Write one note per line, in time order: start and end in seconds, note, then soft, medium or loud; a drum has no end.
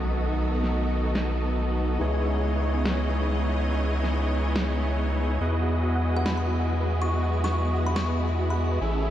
0.00 1.98 B1 medium
0.00 1.97 D#3 medium
0.00 1.97 F#3 medium
0.00 1.97 A3 medium
0.00 1.98 A3 medium
0.00 1.98 B3 medium
0.00 5.37 B3 medium
0.00 1.98 C#4 medium
0.00 1.98 D#4 medium
0.00 1.99 D#4 medium
0.00 1.97 F#4 medium
0.00 1.98 F#4 medium
0.00 1.98 A4 medium
0.00 1.98 D#5 medium
0.00 impact medium
0.63 snare soft
1.15 snare loud
1.98 5.39 C#2 medium
1.98 5.37 C#3 medium
1.98 5.37 E3 medium
1.98 5.38 G#3 medium
1.98 5.39 B3 medium
1.98 5.39 D#4 medium
1.98 5.39 E4 medium
1.98 5.39 G#4 medium
1.98 5.39 C#5 medium
1.98 5.37 D#5 medium
1.98 5.39 D#5 medium
2.85 snare loud
4.04 snare soft
4.56 snare loud
5.41 8.79 E2 medium
5.41 8.78 F#3 medium
5.41 8.78 G#3 medium
5.41 8.79 B3 medium
5.41 9.10 E4 medium
5.41 8.79 E4 medium
5.41 8.79 F#4 medium
5.41 8.79 G#4 medium
5.41 8.79 D#5 medium
5.53 5.59 B4 medium
5.62 5.70 F#4 medium
5.83 5.89 F#4 loud
5.95 5.99 F#5 medium
6.16 6.23 B4 medium
6.16 6.24 F#5 medium
6.26 6.34 F#4 medium
6.26 6.33 B5 medium
6.26 snare loud
6.37 6.44 B5 medium
6.47 6.52 F#4 loud
6.59 6.63 F#5 medium
6.80 6.86 B4 medium
6.90 6.98 F#4 medium
7.02 7.32 C#6 medium
7.11 7.16 F#4 medium
7.23 7.27 F#5 medium
7.44 7.50 B4 medium
7.44 7.54 C#6 medium
7.44 snare soft
7.53 7.61 F#4 medium
7.75 7.80 F#4 loud
7.87 7.91 F#5 medium
7.87 7.94 B5 medium
7.96 8.08 C#6 medium
7.96 snare loud
8.08 8.14 B4 medium
8.17 8.25 F#4 medium
8.39 8.44 F#4 loud
8.50 8.55 F#5 medium
8.50 8.86 B5 medium
8.72 8.78 B4 medium
8.81 9.10 A1 medium
8.81 9.10 C#3 medium
8.81 9.10 A3 medium
8.81 9.10 C#4 medium
8.81 9.10 E4 medium
8.81 8.89 G#4 medium
8.81 9.10 G#4 medium
8.81 9.10 A4 medium
8.81 9.10 E5 medium
9.02 9.08 G#4 medium